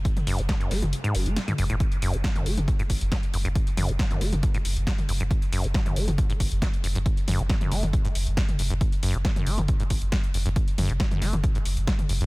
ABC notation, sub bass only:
X:1
M:4/4
L:1/16
Q:1/4=137
K:F#m
V:1 name="Sub bass" clef=bass
z2 F,,, F,,, z2 F,,, F,,, z2 F,,, F,,, z2 F,,, F,,, | z2 F,,, F,,, z2 F,,, F,,, z2 F,,, F,,, z2 F,,, F,,, | z2 F,,, F,,, z2 F,,, F,,, z2 F,,, F,,, z2 F,,, F,,, | z2 F,,, F,,, z2 F,,, F,,, z2 F,,, F,,, z2 F,,, F,,, |
z2 F,,, F,,, z2 F,,, F,,, z2 F,,, F,,, z2 F,,, F,,, | z2 F,,, F,,, z2 F,,, F,,, z2 F,,, F,,, z2 F,,, F,,, | z2 F,,, F,,, z2 F,,, F,,, z2 F,,, F,,, z2 F,,, F,,, |]